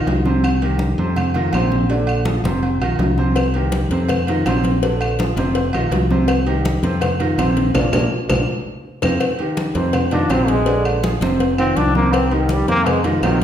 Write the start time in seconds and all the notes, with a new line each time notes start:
Already playing: D#3 D#4 F4
0.06 C2, high conga, low timbale, low agogo
0.25 C3 C4 C5, high conga
0.44 high conga, low agogo, claves
0.61 D#3 D#4 G4, high conga, low agogo
0.79 high conga
0.98 F2 C3 C4 C5, high conga
1.16 high conga, low conga, low agogo, claves
1.34 D#3 D#4 F4, high conga, low conga, low agogo
1.53 A#1 C3 C4 C5, high conga, low agogo, claves
1.72 high conga
1.90 D3 D4 D5, high conga, low agogo
2.07 high conga, low agogo, claves
2.25 F3 F4 G#4, high conga
2.44 F1 C3 C4 C5, high conga
2.63 high conga, low agogo
2.80 A#1 D#3 D#4 F4, high conga, low agogo, claves
2.99 C2, high conga, low timbale, low agogo
3.18 C3 C4 C5, high conga
3.36 cowbell, high conga, low agogo, claves
3.54 D#3 D#4 G4, high conga, low agogo
3.72 cowbell, high conga
3.91 F2 C3 C4 C5, cowbell, high conga
4.08 cowbell, high conga, low conga, low agogo, claves
4.27 D#3 D#4 F4, cowbell, high conga, low agogo
4.46 A#1 C3 C4 C5, cowbell, high conga, low timbale, low agogo, claves
4.64 cowbell, high conga
4.83 D3 D4 D5, cowbell, high conga, low agogo
5.01 high conga, low agogo, claves
5.19 F3 F4 G#4, cowbell, high conga
5.36 F1 C3 C4 C5, cowbell, high conga
5.55 cowbell, high conga, low agogo
5.73 A#1 D#3 D#4 F4, high conga, low agogo, claves
5.91 C2, cowbell, high conga, low timbale, low agogo
6.10 C3 C4 C5, high conga
6.28 cowbell, high conga, low agogo, claves
6.46 D#3 D#4 G4, high conga, low agogo
6.65 cowbell, high conga
6.83 F2 C3 C4 C5, cowbell, high conga
7.01 cowbell, high conga, low conga, low agogo, claves
7.20 D#3 D#4 F4, cowbell, high conga, low agogo
7.38 A#1 C3 C4 C5, cowbell, high conga, low agogo, claves
7.57 cowbell, high conga
7.74 A#1 A#3 D4 F4, cowbell, low conga, high timbale, claves
7.93 A#1 A#3 D4 F4, cowbell, low conga, high timbale, claves
8.29 A#1 A#3 D4 F4, cowbell, low conga, high timbale, claves
9.02 F2 C4 D#4 F4, cowbell, low conga, high timbale, claves
9.20 cowbell, high conga, low agogo, claves
9.39 D#3 D#4 G4, high conga, low agogo
9.57 cowbell, high conga
9.75 F2 C3 C4 C5, cowbell, high conga
9.93 cowbell, high conga, low conga, low agogo, claves
10.11 D#3 D4 D#4 F4, cowbell, high conga, low conga, low agogo
10.29 A#1 C3 C4 C5, cowbell, high conga, low timbale, low agogo, claves
10.48 G#3, cowbell, high conga
10.66 D3 D4 D5, cowbell, high conga, low agogo
10.85 high conga, low agogo, claves
11.03 F3 F4 G#4, cowbell, high conga
11.21 F1 C3 C4 C5, cowbell, high conga
11.40 cowbell, high conga, low agogo
11.58 D#3 C4 D#4 F4, high conga, low agogo, claves
11.77 C2 D4, cowbell, high conga, low agogo
11.95 C3 A#3 C4 C5, high conga
12.13 C4, cowbell, high conga, low agogo, claves
12.31 D#3 D#4 G4, high conga, low agogo
12.49 G3, cowbell, high conga
12.68 F2 C3 A#3 C4 C5, cowbell, high conga
12.86 G#3, cowbell, high conga, low conga, low agogo, claves
13.04 C3 D#3 D#4 F4, cowbell, high conga, low conga, low agogo
13.22 A#1 C3 D#3 C4 C5, cowbell, high conga, low timbale, low agogo, claves